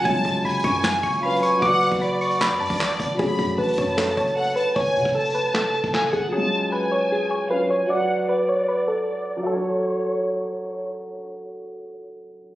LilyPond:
<<
  \new Staff \with { instrumentName = "Violin section" } { \time 4/4 \key fis \minor \tempo 4 = 153 a''4 gis''2 eis''8 gis''8 | fis''4 d''2. | b''4 a''2 fis''8 a''8 | gis''4 a''2 gis''8 fis''8 |
a''4 gis''2 eis''8 gis''8 | fis''4 d''2. | cis''2. r4 | r1 | }
  \new Staff \with { instrumentName = "Synth pluck" } { \time 4/4 \key fis \minor gis''4 b''8 cis'''8 gis''8 cis'''8 b''8 cis'''8 | d'''4 b''8 cis'''8 b''8 a''4. | gis'4 b'8 cis''8 a'8 cis''8 a'8 b'8 | cis''4 a'8 b'8 a'8 a'4 gis'8 |
gis'4 b'8 cis''8 gis'8 cis''8 b'8 cis''8 | d''4 b'8 cis''8 b'8 a'4. | a'2. r4 | r1 | }
  \new Staff \with { instrumentName = "Grand piano" } { \time 4/4 \key fis \minor <fis gis cis' eis'>2. <fis cis' eis' b'>4 | <fis fis' b' d''>1 | <fis a cis' fis'>1~ | <fis a cis' fis'>1 |
<fis gis cis' eis'>2. <fis cis' eis' b'>4 | <fis fis' b' d''>1 | <fis fis' a'>1~ | <fis fis' a'>1 | }
  \new Staff \with { instrumentName = "808-style bass" } { \clef bass \time 4/4 \key fis \minor fis,,8 fis,,8 fis,,8 fis,4 fis,,4 r8 | fis,,8. fis,,4. fis,8 a,,8. fis,,8 | fis,,8 fis,8 a,,8 fis,4 fis,,4 r8 | fis,,8 cis16 fis,,4 eis,,8 fis,,8 fis,,8. fis,,8 |
r1 | r1 | r1 | r1 | }
  \new DrumStaff \with { instrumentName = "Drums" } \drummode { \time 4/4 <hh bd>16 hh16 <hh bd>16 hh16 hh32 hh32 hh32 hh32 <hh bd>16 hh16 <hc sn>16 hh16 <hh bd>16 hh16 \tuplet 3/2 { hh16 hh16 hh16 hh16 r16 r16 } | <hh bd>16 hh16 hh16 <hh bd>16 hh8 hho16 hh16 <hc sn>16 hh16 hh32 hh32 <hh bd>32 hh32 \tuplet 3/2 { <hc sn>16 hh16 hh16 <hh bd>16 r16 r16 } | <hh bd>16 hh16 <hh bd>16 hh16 hh32 hh32 hh32 hh32 <hh bd>16 hh16 <hc sn>16 hh16 <hh bd>16 hh16 \tuplet 3/2 { hh16 hh16 hh16 hh16 r16 r16 } | <hh bd>16 hh16 hh16 <hh bd>16 hh32 hh32 hh32 hh32 hh16 hh16 <hc sn>16 hh16 hh16 <hh bd>16 \tuplet 3/2 { <hc sn>16 hh16 hh16 <hh bd>16 r16 r16 } |
r4 r4 r4 r4 | r4 r4 r4 r4 | r4 r4 r4 r4 | r4 r4 r4 r4 | }
>>